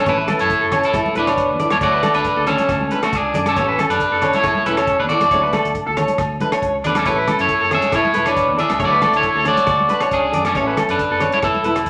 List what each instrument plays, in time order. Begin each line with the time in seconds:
0.06 fingered electric bass A1, nylon-string guitar E3 B3 C#4 A4, clean electric guitar E4 B4 C#5, kick, closed hi-hat
0.18 clean electric guitar B4
0.28 nylon-string guitar B3 C#4, clean electric guitar A4, muted nylon-string guitar stroke, cross-stick, closed hi-hat, high conga, low conga, low agogo
0.39 fingered electric bass F#2, clean electric guitar E4 C#5, closed hi-hat
0.50 kick, closed hi-hat
0.61 fingered electric bass F#1, clean electric guitar A4
0.72 nylon-string guitar B3 C#4 A4, clean electric guitar C#5, cross-stick, closed hi-hat, low conga, low agogo
0.83 clean electric guitar E4 A4, closed hi-hat
0.93 fingered electric bass E1, nylon-string guitar E3 B3 E4 A4, kick, cross-stick, closed hi-hat, low agogo
1.06 high conga
1.15 fingered electric bass E1, nylon-string guitar B3 E4 A4, clean electric guitar B4, closed hi-hat, high conga
1.19 clean electric guitar D4
1.27 clean electric guitar C#5, cross-stick, closed hi-hat, low agogo
1.37 kick, closed hi-hat
1.49 fingered electric bass E2
1.59 nylon-string guitar B3 E4 A4, clean electric guitar D5, closed hi-hat, low conga
1.71 fingered electric bass E2, clean electric guitar E4 C#5, cross-stick, closed hi-hat, high conga, low agogo
1.81 fingered electric bass D2, nylon-string guitar F#3 A3 A4, clean electric guitar F#4 C#5 D5, muted nylon-string guitar stroke, kick, closed hi-hat
1.93 clean electric guitar B4
2.03 nylon-string guitar A3 D4 A4, clean electric guitar A4, cross-stick, closed hi-hat, high conga, low conga, low agogo
2.14 fingered electric bass D2, clean electric guitar D4 B4, closed hi-hat
2.25 kick, closed hi-hat
2.36 fingered electric bass D2, clean electric guitar A4
2.46 nylon-string guitar A3 D4 A4, clean electric guitar C#4 A4 C#5, cross-stick, closed hi-hat, low conga, low agogo
2.58 closed hi-hat, high conga
2.69 fingered electric bass D2, kick, cross-stick, closed hi-hat, low agogo
2.81 high conga
2.91 nylon-string guitar A3 D4 A4, clean electric guitar B4, closed hi-hat, high conga
3.02 clean electric guitar A3 F#4, muted clean electric guitar stroke, cross-stick, closed hi-hat, low agogo
3.12 fingered electric bass C#2, clean electric guitar D4 G#4, kick, closed hi-hat
3.34 fingered electric bass F#2, nylon-string guitar A3 D4 A4, clean electric guitar D5, closed hi-hat, low conga
3.46 clean electric guitar C#4 A4, cross-stick, closed hi-hat, high conga, low agogo
3.56 fingered electric bass A1, nylon-string guitar B3 C#4 A4, clean electric guitar C#5, muted nylon-string guitar stroke, kick, closed hi-hat
3.68 clean electric guitar B4
3.78 nylon-string guitar B3 C#4 A4, clean electric guitar A4, cross-stick, closed hi-hat, high conga, low conga, low agogo
3.89 fingered electric bass F#2, clean electric guitar D4 B4, closed hi-hat
4.00 kick, closed hi-hat
4.11 fingered electric bass F#1, clean electric guitar A4
4.22 nylon-string guitar B3 C#4 A4, clean electric guitar C#5, cross-stick, closed hi-hat, low conga, low agogo
4.33 clean electric guitar E4 C#5, closed hi-hat, high conga
4.44 fingered electric bass E1, nylon-string guitar E3 B3 E4 A4, kick, cross-stick, closed hi-hat, low agogo
4.55 high conga
4.65 fingered electric bass E1, nylon-string guitar B3 E4 A4, clean electric guitar C#4 A4 B4, closed hi-hat, high conga
4.77 clean electric guitar C#5, cross-stick, closed hi-hat, low agogo
4.87 kick, closed hi-hat
4.99 fingered electric bass E2, clean electric guitar D4 B4
5.09 nylon-string guitar B3 E4 A4, clean electric guitar F#4 D5, closed hi-hat, low conga
5.20 fingered electric bass E2, cross-stick, closed hi-hat, high conga, low agogo
5.31 fingered electric bass D2, nylon-string guitar F#3 A3 D4 A4, clean electric guitar C#5, kick, closed hi-hat
5.43 clean electric guitar B4
5.53 nylon-string guitar D4 A4, clean electric guitar A4, cross-stick, closed hi-hat, high conga, low conga, low agogo
5.58 muted nylon-string guitar stroke
5.65 fingered electric bass D2, closed hi-hat
5.75 kick, closed hi-hat
5.87 fingered electric bass D2, clean electric guitar A4
5.97 nylon-string guitar D4 A4, clean electric guitar C#5, cross-stick, closed hi-hat, low conga, low agogo
6.01 nylon-string guitar A3
6.08 closed hi-hat, high conga
6.18 fingered electric bass D2, kick, cross-stick, closed hi-hat, low agogo
6.40 nylon-string guitar A3 D4 A4, clean electric guitar B4, closed hi-hat, high conga, low conga
6.52 clean electric guitar C#5, cross-stick, closed hi-hat, low agogo
6.62 fingered electric bass C#2, kick, closed hi-hat
6.84 fingered electric bass E2, nylon-string guitar A3 D4 A4, clean electric guitar D4 B4 D5, closed hi-hat, low conga
6.95 clean electric guitar C#4 A4, cross-stick, closed hi-hat, high conga, low agogo
7.05 fingered electric bass A1, nylon-string guitar E3 B3 A4, clean electric guitar E4 B4 C#5, muted nylon-string guitar stroke, kick, closed hi-hat
7.18 clean electric guitar B4
7.27 nylon-string guitar B3 C#4, clean electric guitar A4, muted nylon-string guitar stroke, cross-stick, closed hi-hat, high conga, low conga, low agogo
7.39 fingered electric bass F#2, clean electric guitar E4 C#5, closed hi-hat
7.49 kick, closed hi-hat
7.61 fingered electric bass F#1, clean electric guitar A4
7.71 nylon-string guitar B3 C#4 A4, clean electric guitar G#4 C#5 E5, cross-stick, closed hi-hat, low conga, low agogo
7.82 closed hi-hat, high conga
7.92 fingered electric bass E1, nylon-string guitar E3 B3 E4 A4, clean electric guitar E4 C#5, kick, cross-stick, closed hi-hat, low agogo
8.05 high conga
8.14 fingered electric bass E1, nylon-string guitar E4 A4, clean electric guitar B4, closed hi-hat, high conga
8.26 clean electric guitar D4 B4 C#5, cross-stick, closed hi-hat, low agogo
8.36 kick, closed hi-hat
8.48 fingered electric bass E2
8.57 nylon-string guitar E4 A4, clean electric guitar G#4 D5 E5, closed hi-hat, low conga
8.70 fingered electric bass C#2, cross-stick, closed hi-hat, high conga, low agogo
8.78 fingered electric bass D2, nylon-string guitar F#3 A3 D4 A4, clean electric guitar C#5, kick, closed hi-hat
8.84 clean electric guitar F#4 D5
8.92 clean electric guitar B4
9.01 nylon-string guitar A3 D4 A4, clean electric guitar A4, cross-stick, closed hi-hat, high conga, low conga, low agogo
9.13 fingered electric bass D2, clean electric guitar E4 C#5, closed hi-hat
9.23 kick, closed hi-hat
9.35 fingered electric bass D2, clean electric guitar A4
9.44 nylon-string guitar A3 D4 A4, clean electric guitar C#5 D5, cross-stick, closed hi-hat, low conga, low agogo
9.49 clean electric guitar F#4
9.57 closed hi-hat, high conga
9.67 fingered electric bass D2, kick, cross-stick, closed hi-hat, low agogo
9.79 high conga
9.88 nylon-string guitar A3 D4 A4, clean electric guitar B4, closed hi-hat, high conga
10.01 clean electric guitar C#5, cross-stick, closed hi-hat, low agogo
10.11 fingered electric bass C#2, clean electric guitar D4 G#4, kick, closed hi-hat
10.32 fingered electric bass F#2, nylon-string guitar A3 D4 A4, clean electric guitar D5, closed hi-hat, low conga
10.45 clean electric guitar C#4 A4, cross-stick, closed hi-hat, high conga, low agogo
10.53 fingered electric bass A1, nylon-string guitar E3 B3 C#4 A4, clean electric guitar C#5, kick, closed hi-hat
10.67 clean electric guitar B4
10.76 nylon-string guitar B3 C#4 A4, clean electric guitar A4, cross-stick, closed hi-hat, high conga, low conga, low agogo
10.89 fingered electric bass F#2, clean electric guitar D4 B4, closed hi-hat
10.99 kick, closed hi-hat
11.11 fingered electric bass F#1, clean electric guitar A4
11.20 nylon-string guitar B3 C#4 A4, clean electric guitar C#5, cross-stick, closed hi-hat, low conga, low agogo
11.32 clean electric guitar E4 C#5, closed hi-hat, high conga
11.42 fingered electric bass E1, nylon-string guitar E3 B3 E4 A4, clean electric guitar E4 A4, kick, cross-stick, closed hi-hat, low agogo
11.55 high conga
11.63 fingered electric bass E1, nylon-string guitar B3 E4 A4, clean electric guitar B4, closed hi-hat, high conga
11.76 muted clean electric guitar stroke, cross-stick, closed hi-hat, low agogo
11.86 kick, closed hi-hat